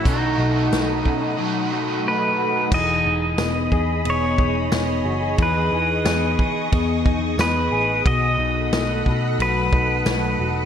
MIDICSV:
0, 0, Header, 1, 7, 480
1, 0, Start_track
1, 0, Key_signature, 4, "major"
1, 0, Tempo, 666667
1, 40, Time_signature, 4, 2, 24, 8
1, 7670, End_track
2, 0, Start_track
2, 0, Title_t, "String machine"
2, 0, Program_c, 0, 50
2, 0, Note_on_c, 0, 69, 74
2, 0, Note_on_c, 0, 78, 62
2, 36, Note_on_c, 0, 87, 86
2, 37, Note_on_c, 0, 83, 69
2, 1933, Note_off_c, 0, 69, 0
2, 1933, Note_off_c, 0, 78, 0
2, 1939, Note_off_c, 0, 83, 0
2, 1939, Note_off_c, 0, 87, 0
2, 1952, Note_on_c, 0, 87, 82
2, 1953, Note_on_c, 0, 68, 81
2, 1953, Note_on_c, 0, 75, 72
2, 1954, Note_on_c, 0, 83, 70
2, 3858, Note_off_c, 0, 83, 0
2, 3878, Note_on_c, 0, 85, 68
2, 5768, Note_off_c, 0, 68, 0
2, 5768, Note_off_c, 0, 75, 0
2, 5780, Note_off_c, 0, 85, 0
2, 5801, Note_on_c, 0, 69, 72
2, 5801, Note_on_c, 0, 83, 70
2, 5803, Note_on_c, 0, 78, 74
2, 7670, Note_off_c, 0, 69, 0
2, 7670, Note_off_c, 0, 78, 0
2, 7670, Note_off_c, 0, 83, 0
2, 7670, Note_off_c, 0, 87, 0
2, 7670, End_track
3, 0, Start_track
3, 0, Title_t, "Pedal steel guitar"
3, 0, Program_c, 1, 26
3, 63, Note_on_c, 1, 63, 70
3, 1463, Note_off_c, 1, 63, 0
3, 1498, Note_on_c, 1, 71, 76
3, 1975, Note_on_c, 1, 75, 96
3, 1983, Note_off_c, 1, 71, 0
3, 2948, Note_off_c, 1, 75, 0
3, 2951, Note_on_c, 1, 73, 85
3, 3906, Note_on_c, 1, 71, 76
3, 3924, Note_off_c, 1, 73, 0
3, 4824, Note_off_c, 1, 71, 0
3, 5333, Note_on_c, 1, 71, 96
3, 5778, Note_off_c, 1, 71, 0
3, 5811, Note_on_c, 1, 75, 102
3, 6782, Note_on_c, 1, 71, 88
3, 6794, Note_off_c, 1, 75, 0
3, 7670, Note_off_c, 1, 71, 0
3, 7670, End_track
4, 0, Start_track
4, 0, Title_t, "Clean electric guitar"
4, 0, Program_c, 2, 27
4, 0, Note_on_c, 2, 54, 66
4, 0, Note_on_c, 2, 57, 51
4, 0, Note_on_c, 2, 61, 55
4, 38, Note_on_c, 2, 47, 80
4, 42, Note_on_c, 2, 66, 66
4, 86, Note_off_c, 2, 61, 0
4, 283, Note_on_c, 2, 63, 53
4, 304, Note_off_c, 2, 57, 0
4, 517, Note_on_c, 2, 57, 55
4, 758, Note_off_c, 2, 63, 0
4, 761, Note_on_c, 2, 61, 58
4, 880, Note_off_c, 2, 61, 0
4, 880, Note_on_c, 2, 63, 46
4, 999, Note_off_c, 2, 54, 0
4, 1002, Note_on_c, 2, 54, 66
4, 1230, Note_off_c, 2, 66, 0
4, 1239, Note_on_c, 2, 66, 64
4, 1469, Note_off_c, 2, 57, 0
4, 1478, Note_on_c, 2, 57, 56
4, 1706, Note_off_c, 2, 66, 0
4, 1715, Note_on_c, 2, 66, 60
4, 1953, Note_off_c, 2, 54, 0
4, 1956, Note_on_c, 2, 52, 89
4, 1957, Note_off_c, 2, 66, 0
4, 1959, Note_off_c, 2, 47, 0
4, 1960, Note_on_c, 2, 68, 68
4, 2007, Note_off_c, 2, 57, 0
4, 2008, Note_off_c, 2, 63, 0
4, 2201, Note_on_c, 2, 63, 57
4, 2434, Note_on_c, 2, 59, 66
4, 2670, Note_off_c, 2, 68, 0
4, 2678, Note_on_c, 2, 68, 72
4, 2912, Note_off_c, 2, 59, 0
4, 2915, Note_on_c, 2, 59, 72
4, 3151, Note_off_c, 2, 63, 0
4, 3154, Note_on_c, 2, 63, 65
4, 3396, Note_off_c, 2, 59, 0
4, 3399, Note_on_c, 2, 59, 57
4, 3633, Note_off_c, 2, 68, 0
4, 3636, Note_on_c, 2, 66, 63
4, 3757, Note_off_c, 2, 66, 0
4, 3757, Note_on_c, 2, 68, 57
4, 3870, Note_off_c, 2, 52, 0
4, 3872, Note_off_c, 2, 68, 0
4, 3878, Note_on_c, 2, 52, 85
4, 3883, Note_on_c, 2, 68, 69
4, 4115, Note_off_c, 2, 63, 0
4, 4118, Note_on_c, 2, 63, 58
4, 4355, Note_off_c, 2, 59, 0
4, 4358, Note_on_c, 2, 59, 63
4, 4590, Note_off_c, 2, 68, 0
4, 4599, Note_on_c, 2, 68, 66
4, 4832, Note_off_c, 2, 59, 0
4, 4835, Note_on_c, 2, 59, 77
4, 5070, Note_off_c, 2, 63, 0
4, 5072, Note_on_c, 2, 63, 63
4, 5315, Note_off_c, 2, 59, 0
4, 5318, Note_on_c, 2, 59, 60
4, 5550, Note_off_c, 2, 68, 0
4, 5559, Note_on_c, 2, 68, 69
4, 5795, Note_on_c, 2, 47, 82
4, 5796, Note_off_c, 2, 68, 0
4, 5799, Note_off_c, 2, 52, 0
4, 5799, Note_on_c, 2, 66, 69
4, 6035, Note_off_c, 2, 63, 0
4, 6038, Note_on_c, 2, 63, 61
4, 6281, Note_off_c, 2, 59, 0
4, 6284, Note_on_c, 2, 57, 61
4, 6523, Note_off_c, 2, 66, 0
4, 6526, Note_on_c, 2, 66, 71
4, 6767, Note_on_c, 2, 54, 77
4, 6997, Note_off_c, 2, 63, 0
4, 7005, Note_on_c, 2, 63, 67
4, 7237, Note_off_c, 2, 57, 0
4, 7245, Note_on_c, 2, 57, 58
4, 7484, Note_off_c, 2, 66, 0
4, 7487, Note_on_c, 2, 66, 71
4, 7670, Note_off_c, 2, 47, 0
4, 7670, Note_off_c, 2, 54, 0
4, 7670, Note_off_c, 2, 57, 0
4, 7670, Note_off_c, 2, 63, 0
4, 7670, Note_off_c, 2, 66, 0
4, 7670, End_track
5, 0, Start_track
5, 0, Title_t, "Overdriven electric guitar"
5, 0, Program_c, 3, 29
5, 30, Note_on_c, 3, 47, 71
5, 33, Note_on_c, 3, 51, 70
5, 38, Note_on_c, 3, 54, 77
5, 41, Note_on_c, 3, 57, 88
5, 44, Note_on_c, 3, 63, 72
5, 46, Note_on_c, 3, 66, 84
5, 260, Note_off_c, 3, 66, 0
5, 268, Note_on_c, 3, 66, 46
5, 270, Note_off_c, 3, 63, 0
5, 275, Note_off_c, 3, 47, 0
5, 277, Note_off_c, 3, 51, 0
5, 278, Note_off_c, 3, 57, 0
5, 278, Note_on_c, 3, 63, 49
5, 279, Note_off_c, 3, 54, 0
5, 286, Note_on_c, 3, 57, 51
5, 296, Note_on_c, 3, 54, 48
5, 973, Note_off_c, 3, 54, 0
5, 982, Note_on_c, 3, 54, 57
5, 994, Note_off_c, 3, 66, 0
5, 997, Note_off_c, 3, 57, 0
5, 1005, Note_on_c, 3, 57, 54
5, 1019, Note_off_c, 3, 63, 0
5, 1022, Note_on_c, 3, 63, 62
5, 1039, Note_on_c, 3, 66, 65
5, 1951, Note_off_c, 3, 54, 0
5, 1963, Note_off_c, 3, 57, 0
5, 1979, Note_off_c, 3, 66, 0
5, 2339, Note_off_c, 3, 63, 0
5, 7670, End_track
6, 0, Start_track
6, 0, Title_t, "Picked electric bass"
6, 0, Program_c, 4, 34
6, 40, Note_on_c, 4, 35, 86
6, 251, Note_off_c, 4, 35, 0
6, 276, Note_on_c, 4, 35, 86
6, 489, Note_off_c, 4, 35, 0
6, 518, Note_on_c, 4, 35, 89
6, 730, Note_off_c, 4, 35, 0
6, 758, Note_on_c, 4, 47, 88
6, 970, Note_off_c, 4, 47, 0
6, 1956, Note_on_c, 4, 28, 95
6, 2169, Note_off_c, 4, 28, 0
6, 2197, Note_on_c, 4, 28, 104
6, 2410, Note_off_c, 4, 28, 0
6, 2435, Note_on_c, 4, 28, 100
6, 2648, Note_off_c, 4, 28, 0
6, 2678, Note_on_c, 4, 40, 103
6, 2890, Note_off_c, 4, 40, 0
6, 2914, Note_on_c, 4, 28, 90
6, 3128, Note_off_c, 4, 28, 0
6, 3156, Note_on_c, 4, 28, 85
6, 3369, Note_off_c, 4, 28, 0
6, 3393, Note_on_c, 4, 28, 107
6, 3607, Note_off_c, 4, 28, 0
6, 3630, Note_on_c, 4, 30, 84
6, 3846, Note_off_c, 4, 30, 0
6, 3878, Note_on_c, 4, 40, 101
6, 4090, Note_off_c, 4, 40, 0
6, 4117, Note_on_c, 4, 40, 96
6, 4330, Note_off_c, 4, 40, 0
6, 4355, Note_on_c, 4, 40, 103
6, 4568, Note_off_c, 4, 40, 0
6, 4601, Note_on_c, 4, 52, 95
6, 4812, Note_off_c, 4, 52, 0
6, 4843, Note_on_c, 4, 40, 102
6, 5053, Note_off_c, 4, 40, 0
6, 5082, Note_on_c, 4, 40, 98
6, 5293, Note_off_c, 4, 40, 0
6, 5312, Note_on_c, 4, 40, 109
6, 5527, Note_off_c, 4, 40, 0
6, 5555, Note_on_c, 4, 33, 87
6, 5768, Note_off_c, 4, 33, 0
6, 5800, Note_on_c, 4, 35, 99
6, 6011, Note_off_c, 4, 35, 0
6, 6031, Note_on_c, 4, 35, 107
6, 6246, Note_off_c, 4, 35, 0
6, 6275, Note_on_c, 4, 35, 100
6, 6488, Note_off_c, 4, 35, 0
6, 6524, Note_on_c, 4, 47, 94
6, 6734, Note_off_c, 4, 47, 0
6, 6759, Note_on_c, 4, 35, 106
6, 6971, Note_off_c, 4, 35, 0
6, 7002, Note_on_c, 4, 35, 95
6, 7212, Note_off_c, 4, 35, 0
6, 7238, Note_on_c, 4, 35, 97
6, 7450, Note_off_c, 4, 35, 0
6, 7481, Note_on_c, 4, 28, 87
6, 7670, Note_off_c, 4, 28, 0
6, 7670, End_track
7, 0, Start_track
7, 0, Title_t, "Drums"
7, 39, Note_on_c, 9, 36, 107
7, 41, Note_on_c, 9, 42, 65
7, 111, Note_off_c, 9, 36, 0
7, 113, Note_off_c, 9, 42, 0
7, 522, Note_on_c, 9, 42, 62
7, 523, Note_on_c, 9, 38, 90
7, 594, Note_off_c, 9, 42, 0
7, 595, Note_off_c, 9, 38, 0
7, 760, Note_on_c, 9, 36, 68
7, 832, Note_off_c, 9, 36, 0
7, 1956, Note_on_c, 9, 49, 94
7, 1957, Note_on_c, 9, 36, 114
7, 2028, Note_off_c, 9, 49, 0
7, 2029, Note_off_c, 9, 36, 0
7, 2433, Note_on_c, 9, 51, 54
7, 2435, Note_on_c, 9, 38, 109
7, 2436, Note_on_c, 9, 54, 64
7, 2505, Note_off_c, 9, 51, 0
7, 2507, Note_off_c, 9, 38, 0
7, 2508, Note_off_c, 9, 54, 0
7, 2677, Note_on_c, 9, 36, 76
7, 2749, Note_off_c, 9, 36, 0
7, 2918, Note_on_c, 9, 51, 59
7, 2990, Note_off_c, 9, 51, 0
7, 3157, Note_on_c, 9, 36, 91
7, 3229, Note_off_c, 9, 36, 0
7, 3397, Note_on_c, 9, 54, 68
7, 3398, Note_on_c, 9, 38, 111
7, 3403, Note_on_c, 9, 51, 63
7, 3469, Note_off_c, 9, 54, 0
7, 3470, Note_off_c, 9, 38, 0
7, 3475, Note_off_c, 9, 51, 0
7, 3875, Note_on_c, 9, 51, 63
7, 3877, Note_on_c, 9, 36, 114
7, 3947, Note_off_c, 9, 51, 0
7, 3949, Note_off_c, 9, 36, 0
7, 4358, Note_on_c, 9, 51, 55
7, 4360, Note_on_c, 9, 38, 112
7, 4361, Note_on_c, 9, 54, 61
7, 4430, Note_off_c, 9, 51, 0
7, 4432, Note_off_c, 9, 38, 0
7, 4433, Note_off_c, 9, 54, 0
7, 4601, Note_on_c, 9, 36, 85
7, 4673, Note_off_c, 9, 36, 0
7, 4842, Note_on_c, 9, 36, 94
7, 4842, Note_on_c, 9, 51, 62
7, 4914, Note_off_c, 9, 36, 0
7, 4914, Note_off_c, 9, 51, 0
7, 5081, Note_on_c, 9, 36, 98
7, 5153, Note_off_c, 9, 36, 0
7, 5320, Note_on_c, 9, 54, 66
7, 5322, Note_on_c, 9, 38, 114
7, 5326, Note_on_c, 9, 51, 61
7, 5392, Note_off_c, 9, 54, 0
7, 5394, Note_off_c, 9, 38, 0
7, 5398, Note_off_c, 9, 51, 0
7, 5801, Note_on_c, 9, 36, 116
7, 5803, Note_on_c, 9, 51, 62
7, 5873, Note_off_c, 9, 36, 0
7, 5875, Note_off_c, 9, 51, 0
7, 6283, Note_on_c, 9, 51, 59
7, 6284, Note_on_c, 9, 38, 115
7, 6285, Note_on_c, 9, 54, 59
7, 6355, Note_off_c, 9, 51, 0
7, 6356, Note_off_c, 9, 38, 0
7, 6357, Note_off_c, 9, 54, 0
7, 6524, Note_on_c, 9, 36, 78
7, 6596, Note_off_c, 9, 36, 0
7, 6769, Note_on_c, 9, 51, 59
7, 6841, Note_off_c, 9, 51, 0
7, 7003, Note_on_c, 9, 36, 97
7, 7075, Note_off_c, 9, 36, 0
7, 7242, Note_on_c, 9, 54, 70
7, 7244, Note_on_c, 9, 38, 104
7, 7248, Note_on_c, 9, 51, 66
7, 7314, Note_off_c, 9, 54, 0
7, 7316, Note_off_c, 9, 38, 0
7, 7320, Note_off_c, 9, 51, 0
7, 7670, End_track
0, 0, End_of_file